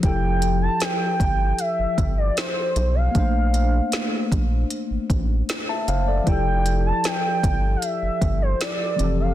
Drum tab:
HH |xxxxxxxx|xxxxxxxx|xxxxxxxx|
SD |--o---o-|--o---o-|--o---o-|
BD |o--o-o--|o--o-o--|o--o-o--|